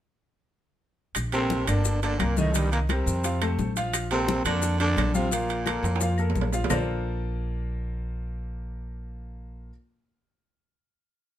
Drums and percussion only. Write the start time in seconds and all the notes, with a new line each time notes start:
1.15 high bongo, high conga, high timbale, claves, maracas
1.32 high bongo, high conga, high timbale, maracas
1.50 high bongo, high conga, maracas
1.67 high conga, high timbale, claves, maracas
1.85 high bongo, high conga, maracas
2.02 high bongo, high conga, high timbale, maracas
2.20 high bongo, low bongo, high conga, high timbale, claves, maracas
2.37 high bongo, high conga, maracas
2.54 high bongo, high conga, high timbale, maracas
2.72 high bongo, high conga, high timbale, maracas
2.89 high bongo, high conga, high timbale, claves, maracas
3.07 high conga, maracas
3.24 high bongo, high conga, high timbale, maracas
3.41 high bongo, high conga, high timbale, claves, maracas
3.59 high bongo, low bongo, high conga, maracas
3.76 high bongo, high timbale, maracas
3.93 high bongo, high conga, high timbale, claves, maracas
4.11 high bongo, high conga, high timbale, maracas
4.28 high bongo, high conga, maracas
4.45 high timbale, claves, maracas
4.62 high bongo, high conga, maracas
4.80 high bongo, high conga, high timbale, maracas
4.97 high bongo, low bongo, high conga, high timbale, low timbale, claves, maracas
5.14 high bongo, high conga, maracas
5.31 high bongo, high conga, high timbale, maracas
5.49 high bongo, high conga, high timbale, maracas
5.66 high bongo, high conga, high timbale, claves, maracas
5.84 high conga, high timbale, maracas
5.96 high timbale
6.01 high bongo, maracas
6.18 high bongo, high conga, claves, maracas
6.30 low timbale
6.35 high bongo, low bongo, high conga, maracas
6.41 low timbale
6.53 high bongo, low timbale, maracas
6.64 low timbale
6.70 low bongo, low conga, low timbale, claves, maracas